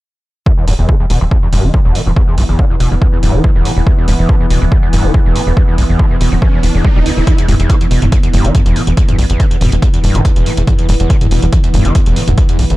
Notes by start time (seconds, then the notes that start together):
0.46 E2 E3 B3, kick
0.57 E2
0.67 E1 G2, open hi-hat
0.79 E1 E2
0.89 E3, kick
1.00 E2
1.10 E1 B2, open hi-hat
1.21 E1 E2
1.31 E2, kick
1.43 E2
1.53 F1 G2, open hi-hat
1.64 F1 E3
1.74 E2, kick
1.85 E1 E2
1.95 B2, open hi-hat
2.06 E1 E2
2.16 E2, kick
2.28 E2
2.38 B1 G2, open hi-hat
2.49 G1 E2
2.59 E3, kick
2.70 E2
2.80 E1 B2, open hi-hat
2.91 E1 E2
3.02 E2, kick
3.13 E2
3.23 E1 G2, open hi-hat
3.34 E1 E3
3.44 E2, kick
3.55 E1 E2
3.65 B2, open hi-hat
3.77 E1 E2
3.87 E2, kick, riser
3.98 E2
4.08 E1 G2, open hi-hat
4.19 E1 E2
4.29 E3, kick
4.41 E2
4.50 E1 B2, open hi-hat
4.62 E1 E2
4.72 E2, kick
4.83 E2
4.93 F1 G2, open hi-hat
5.04 F1 E3
5.14 E2, kick
5.25 E1 E2
5.36 B2, open hi-hat
5.47 E1 E2
5.57 E2, kick
5.68 E2
5.78 B1 G2, open hi-hat
5.89 G1 E2
5.99 E3, kick
6.11 E2
6.21 E1 B2, open hi-hat
6.32 E1 E2
6.42 E2, kick
6.53 E2
6.63 E1 E2, open hi-hat
6.75 E1 E2
6.85 G3, kick
6.96 E1 G3
7.06 D2, open hi-hat
7.17 E1 D2
7.27 E2 E3 B3, kick, closed hi-hat
7.38 E2, closed hi-hat
7.48 E1 G2, mid tom, open hi-hat
7.60 E1 E2, closed hi-hat
7.70 E3, kick, closed hi-hat
7.81 E2, closed hi-hat
7.91 E1 B2, open hi-hat
8.02 E1 E2, closed hi-hat, mid tom
8.12 E2, kick, closed hi-hat
8.23 E2, closed hi-hat
8.33 F1 G2, open hi-hat
8.45 F1 E3, closed hi-hat
8.55 E2, kick, closed hi-hat, mid tom
8.66 E1 E2, closed hi-hat
8.76 B2, open hi-hat
8.87 E1 E2, closed hi-hat
8.97 E2, kick, closed hi-hat
9.08 E2, closed hi-hat, mid tom
9.18 B1 G2, open hi-hat
9.30 G1 E2, closed hi-hat
9.40 E3, kick, closed hi-hat
9.51 E2, closed hi-hat
9.61 E1 B2, mid tom, open hi-hat
9.72 E1 E2, closed hi-hat
9.82 E2, kick, closed hi-hat
9.94 E2, closed hi-hat
10.04 E1 G2, open hi-hat
10.15 E1 E3, closed hi-hat, mid tom
10.25 E2, kick, closed hi-hat
10.36 E1 E2, closed hi-hat
10.46 B2, open hi-hat
10.57 E1 E2, closed hi-hat
10.67 E2, kick, closed hi-hat, mid tom
10.79 E2, closed hi-hat
10.89 E1 G2, open hi-hat
11.00 E1 E2, closed hi-hat
11.10 E3, kick, closed hi-hat
11.21 E2, closed hi-hat, mid tom
11.31 E1 B2, open hi-hat
11.42 E1 E2, closed hi-hat
11.53 E2, kick, closed hi-hat
11.64 E2, closed hi-hat
11.74 F1 G2, mid tom, open hi-hat
11.85 F1 E3, closed hi-hat
11.95 E2, kick, closed hi-hat
12.06 E1 E2, closed hi-hat
12.16 B2, open hi-hat
12.28 E1 E2, closed hi-hat, mid tom
12.38 E2, kick, closed hi-hat
12.49 E2, closed hi-hat
12.59 B1 G2, open hi-hat
12.70 G1 E2, closed hi-hat